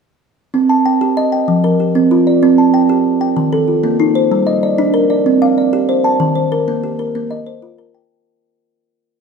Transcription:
0, 0, Header, 1, 2, 480
1, 0, Start_track
1, 0, Tempo, 315292
1, 821, Time_signature, 12, 3, 24, 8
1, 14014, End_track
2, 0, Start_track
2, 0, Title_t, "Kalimba"
2, 0, Program_c, 0, 108
2, 819, Note_on_c, 0, 60, 70
2, 1057, Note_on_c, 0, 81, 53
2, 1298, Note_off_c, 0, 60, 0
2, 1303, Note_on_c, 0, 79, 58
2, 1541, Note_on_c, 0, 67, 72
2, 1775, Note_off_c, 0, 81, 0
2, 1782, Note_on_c, 0, 75, 66
2, 1997, Note_off_c, 0, 79, 0
2, 2015, Note_on_c, 0, 79, 57
2, 2017, Note_off_c, 0, 67, 0
2, 2252, Note_on_c, 0, 53, 65
2, 2493, Note_off_c, 0, 79, 0
2, 2496, Note_off_c, 0, 75, 0
2, 2496, Note_on_c, 0, 70, 56
2, 2731, Note_off_c, 0, 53, 0
2, 2739, Note_on_c, 0, 67, 49
2, 2972, Note_on_c, 0, 60, 72
2, 3211, Note_off_c, 0, 70, 0
2, 3215, Note_on_c, 0, 65, 65
2, 3449, Note_off_c, 0, 60, 0
2, 3452, Note_off_c, 0, 67, 0
2, 3455, Note_on_c, 0, 74, 57
2, 3694, Note_on_c, 0, 60, 75
2, 3929, Note_off_c, 0, 65, 0
2, 3929, Note_off_c, 0, 74, 0
2, 3930, Note_on_c, 0, 81, 50
2, 4167, Note_on_c, 0, 79, 62
2, 4168, Note_off_c, 0, 60, 0
2, 4406, Note_on_c, 0, 67, 71
2, 4645, Note_off_c, 0, 81, 0
2, 4867, Note_off_c, 0, 79, 0
2, 4882, Note_off_c, 0, 67, 0
2, 4886, Note_on_c, 0, 79, 58
2, 5123, Note_on_c, 0, 51, 67
2, 5361, Note_off_c, 0, 79, 0
2, 5367, Note_on_c, 0, 69, 65
2, 5598, Note_on_c, 0, 65, 47
2, 5600, Note_off_c, 0, 51, 0
2, 5838, Note_on_c, 0, 58, 78
2, 6081, Note_off_c, 0, 69, 0
2, 6084, Note_on_c, 0, 63, 63
2, 6316, Note_off_c, 0, 65, 0
2, 6317, Note_off_c, 0, 58, 0
2, 6324, Note_on_c, 0, 72, 58
2, 6569, Note_on_c, 0, 55, 73
2, 6798, Note_off_c, 0, 63, 0
2, 6798, Note_on_c, 0, 75, 59
2, 6799, Note_off_c, 0, 72, 0
2, 7041, Note_off_c, 0, 55, 0
2, 7048, Note_on_c, 0, 74, 59
2, 7283, Note_on_c, 0, 62, 79
2, 7516, Note_off_c, 0, 75, 0
2, 7516, Note_on_c, 0, 70, 62
2, 7744, Note_off_c, 0, 74, 0
2, 7758, Note_off_c, 0, 62, 0
2, 7763, Note_on_c, 0, 74, 60
2, 8007, Note_on_c, 0, 60, 67
2, 8235, Note_off_c, 0, 70, 0
2, 8238, Note_off_c, 0, 74, 0
2, 8249, Note_on_c, 0, 77, 68
2, 8481, Note_off_c, 0, 60, 0
2, 8490, Note_on_c, 0, 74, 50
2, 8723, Note_on_c, 0, 67, 70
2, 8963, Note_off_c, 0, 77, 0
2, 8964, Note_on_c, 0, 72, 55
2, 9200, Note_off_c, 0, 67, 0
2, 9201, Note_on_c, 0, 81, 59
2, 9204, Note_off_c, 0, 74, 0
2, 9436, Note_on_c, 0, 51, 78
2, 9656, Note_off_c, 0, 72, 0
2, 9674, Note_on_c, 0, 72, 52
2, 9680, Note_off_c, 0, 81, 0
2, 9918, Note_off_c, 0, 51, 0
2, 9924, Note_on_c, 0, 70, 63
2, 10168, Note_on_c, 0, 58, 74
2, 10398, Note_off_c, 0, 72, 0
2, 10406, Note_on_c, 0, 67, 60
2, 10625, Note_off_c, 0, 70, 0
2, 10644, Note_on_c, 0, 70, 54
2, 10646, Note_off_c, 0, 58, 0
2, 10888, Note_on_c, 0, 58, 73
2, 11122, Note_on_c, 0, 75, 60
2, 11125, Note_off_c, 0, 70, 0
2, 11127, Note_off_c, 0, 67, 0
2, 11364, Note_on_c, 0, 72, 50
2, 11368, Note_off_c, 0, 58, 0
2, 11606, Note_on_c, 0, 65, 75
2, 11848, Note_off_c, 0, 75, 0
2, 11850, Note_on_c, 0, 70, 60
2, 12090, Note_off_c, 0, 65, 0
2, 12090, Note_off_c, 0, 72, 0
2, 12095, Note_on_c, 0, 79, 55
2, 12575, Note_off_c, 0, 70, 0
2, 12577, Note_off_c, 0, 79, 0
2, 14014, End_track
0, 0, End_of_file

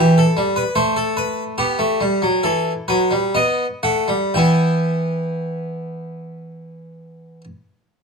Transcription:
0, 0, Header, 1, 2, 480
1, 0, Start_track
1, 0, Key_signature, 1, "minor"
1, 0, Tempo, 797872
1, 947, Time_signature, 3, 2, 24, 8
1, 947, Tempo, 855920
1, 1427, Tempo, 914634
1, 1907, Tempo, 995025
1, 2387, Tempo, 1032702
1, 4102, End_track
2, 0, Start_track
2, 0, Title_t, "Harpsichord"
2, 0, Program_c, 0, 6
2, 0, Note_on_c, 0, 52, 82
2, 0, Note_on_c, 0, 67, 96
2, 100, Note_off_c, 0, 67, 0
2, 107, Note_on_c, 0, 69, 94
2, 133, Note_off_c, 0, 52, 0
2, 221, Note_on_c, 0, 55, 82
2, 249, Note_off_c, 0, 69, 0
2, 338, Note_on_c, 0, 71, 100
2, 366, Note_off_c, 0, 55, 0
2, 452, Note_off_c, 0, 71, 0
2, 454, Note_on_c, 0, 57, 96
2, 455, Note_on_c, 0, 72, 106
2, 571, Note_off_c, 0, 72, 0
2, 580, Note_on_c, 0, 69, 82
2, 696, Note_off_c, 0, 69, 0
2, 704, Note_on_c, 0, 71, 91
2, 857, Note_off_c, 0, 71, 0
2, 933, Note_off_c, 0, 57, 0
2, 950, Note_on_c, 0, 67, 91
2, 951, Note_on_c, 0, 59, 86
2, 1064, Note_off_c, 0, 59, 0
2, 1068, Note_on_c, 0, 57, 92
2, 1182, Note_off_c, 0, 57, 0
2, 1189, Note_on_c, 0, 55, 86
2, 1304, Note_off_c, 0, 55, 0
2, 1310, Note_on_c, 0, 54, 86
2, 1414, Note_off_c, 0, 67, 0
2, 1426, Note_off_c, 0, 54, 0
2, 1429, Note_on_c, 0, 69, 82
2, 1431, Note_on_c, 0, 52, 82
2, 1574, Note_off_c, 0, 69, 0
2, 1576, Note_off_c, 0, 52, 0
2, 1664, Note_on_c, 0, 71, 83
2, 1665, Note_on_c, 0, 54, 81
2, 1781, Note_off_c, 0, 54, 0
2, 1783, Note_on_c, 0, 55, 78
2, 1815, Note_off_c, 0, 71, 0
2, 1903, Note_off_c, 0, 55, 0
2, 1908, Note_on_c, 0, 59, 92
2, 1908, Note_on_c, 0, 75, 82
2, 2053, Note_off_c, 0, 59, 0
2, 2054, Note_off_c, 0, 75, 0
2, 2142, Note_on_c, 0, 57, 79
2, 2142, Note_on_c, 0, 78, 84
2, 2260, Note_off_c, 0, 57, 0
2, 2262, Note_on_c, 0, 55, 73
2, 2294, Note_off_c, 0, 78, 0
2, 2382, Note_off_c, 0, 55, 0
2, 2388, Note_on_c, 0, 52, 73
2, 2388, Note_on_c, 0, 79, 70
2, 2401, Note_on_c, 0, 59, 60
2, 2401, Note_on_c, 0, 64, 63
2, 3815, Note_off_c, 0, 52, 0
2, 3815, Note_off_c, 0, 79, 0
2, 3828, Note_off_c, 0, 59, 0
2, 3828, Note_off_c, 0, 64, 0
2, 4102, End_track
0, 0, End_of_file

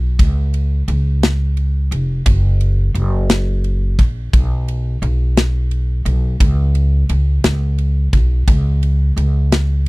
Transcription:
0, 0, Header, 1, 3, 480
1, 0, Start_track
1, 0, Tempo, 690449
1, 134, Time_signature, 6, 3, 24, 8
1, 6873, End_track
2, 0, Start_track
2, 0, Title_t, "Upright bass"
2, 0, Program_c, 0, 32
2, 0, Note_on_c, 0, 35, 82
2, 119, Note_off_c, 0, 35, 0
2, 131, Note_on_c, 0, 37, 92
2, 584, Note_off_c, 0, 37, 0
2, 610, Note_on_c, 0, 37, 93
2, 1303, Note_off_c, 0, 37, 0
2, 1329, Note_on_c, 0, 29, 86
2, 1556, Note_off_c, 0, 29, 0
2, 1570, Note_on_c, 0, 30, 100
2, 2023, Note_off_c, 0, 30, 0
2, 2047, Note_on_c, 0, 30, 90
2, 2742, Note_off_c, 0, 30, 0
2, 2773, Note_on_c, 0, 34, 89
2, 2998, Note_off_c, 0, 34, 0
2, 3012, Note_on_c, 0, 35, 101
2, 3464, Note_off_c, 0, 35, 0
2, 3489, Note_on_c, 0, 35, 93
2, 4184, Note_off_c, 0, 35, 0
2, 4208, Note_on_c, 0, 35, 89
2, 4436, Note_off_c, 0, 35, 0
2, 4451, Note_on_c, 0, 37, 100
2, 4905, Note_off_c, 0, 37, 0
2, 4932, Note_on_c, 0, 37, 93
2, 5159, Note_off_c, 0, 37, 0
2, 5173, Note_on_c, 0, 37, 94
2, 5627, Note_off_c, 0, 37, 0
2, 5652, Note_on_c, 0, 35, 86
2, 5879, Note_off_c, 0, 35, 0
2, 5892, Note_on_c, 0, 37, 106
2, 6347, Note_off_c, 0, 37, 0
2, 6371, Note_on_c, 0, 37, 89
2, 6873, Note_off_c, 0, 37, 0
2, 6873, End_track
3, 0, Start_track
3, 0, Title_t, "Drums"
3, 134, Note_on_c, 9, 36, 97
3, 134, Note_on_c, 9, 51, 72
3, 203, Note_off_c, 9, 36, 0
3, 204, Note_off_c, 9, 51, 0
3, 374, Note_on_c, 9, 51, 45
3, 443, Note_off_c, 9, 51, 0
3, 612, Note_on_c, 9, 51, 52
3, 682, Note_off_c, 9, 51, 0
3, 856, Note_on_c, 9, 51, 68
3, 858, Note_on_c, 9, 38, 107
3, 926, Note_off_c, 9, 51, 0
3, 927, Note_off_c, 9, 38, 0
3, 1091, Note_on_c, 9, 51, 38
3, 1160, Note_off_c, 9, 51, 0
3, 1334, Note_on_c, 9, 51, 58
3, 1403, Note_off_c, 9, 51, 0
3, 1570, Note_on_c, 9, 51, 75
3, 1572, Note_on_c, 9, 36, 101
3, 1640, Note_off_c, 9, 51, 0
3, 1641, Note_off_c, 9, 36, 0
3, 1812, Note_on_c, 9, 51, 45
3, 1881, Note_off_c, 9, 51, 0
3, 2052, Note_on_c, 9, 51, 54
3, 2122, Note_off_c, 9, 51, 0
3, 2291, Note_on_c, 9, 51, 67
3, 2293, Note_on_c, 9, 38, 110
3, 2361, Note_off_c, 9, 51, 0
3, 2363, Note_off_c, 9, 38, 0
3, 2532, Note_on_c, 9, 51, 38
3, 2601, Note_off_c, 9, 51, 0
3, 2773, Note_on_c, 9, 36, 90
3, 2773, Note_on_c, 9, 51, 58
3, 2842, Note_off_c, 9, 36, 0
3, 2843, Note_off_c, 9, 51, 0
3, 3013, Note_on_c, 9, 36, 107
3, 3014, Note_on_c, 9, 51, 70
3, 3083, Note_off_c, 9, 36, 0
3, 3084, Note_off_c, 9, 51, 0
3, 3256, Note_on_c, 9, 51, 47
3, 3326, Note_off_c, 9, 51, 0
3, 3493, Note_on_c, 9, 51, 51
3, 3563, Note_off_c, 9, 51, 0
3, 3735, Note_on_c, 9, 51, 71
3, 3736, Note_on_c, 9, 38, 110
3, 3804, Note_off_c, 9, 51, 0
3, 3806, Note_off_c, 9, 38, 0
3, 3971, Note_on_c, 9, 51, 39
3, 4040, Note_off_c, 9, 51, 0
3, 4212, Note_on_c, 9, 51, 57
3, 4282, Note_off_c, 9, 51, 0
3, 4452, Note_on_c, 9, 36, 103
3, 4452, Note_on_c, 9, 51, 68
3, 4522, Note_off_c, 9, 36, 0
3, 4522, Note_off_c, 9, 51, 0
3, 4692, Note_on_c, 9, 51, 45
3, 4761, Note_off_c, 9, 51, 0
3, 4931, Note_on_c, 9, 51, 53
3, 5001, Note_off_c, 9, 51, 0
3, 5173, Note_on_c, 9, 51, 67
3, 5174, Note_on_c, 9, 38, 112
3, 5242, Note_off_c, 9, 51, 0
3, 5244, Note_off_c, 9, 38, 0
3, 5412, Note_on_c, 9, 51, 38
3, 5481, Note_off_c, 9, 51, 0
3, 5652, Note_on_c, 9, 51, 55
3, 5653, Note_on_c, 9, 36, 95
3, 5722, Note_off_c, 9, 36, 0
3, 5722, Note_off_c, 9, 51, 0
3, 5893, Note_on_c, 9, 36, 100
3, 5893, Note_on_c, 9, 51, 71
3, 5962, Note_off_c, 9, 36, 0
3, 5963, Note_off_c, 9, 51, 0
3, 6136, Note_on_c, 9, 51, 48
3, 6206, Note_off_c, 9, 51, 0
3, 6378, Note_on_c, 9, 51, 53
3, 6447, Note_off_c, 9, 51, 0
3, 6620, Note_on_c, 9, 51, 69
3, 6621, Note_on_c, 9, 38, 109
3, 6689, Note_off_c, 9, 51, 0
3, 6691, Note_off_c, 9, 38, 0
3, 6873, End_track
0, 0, End_of_file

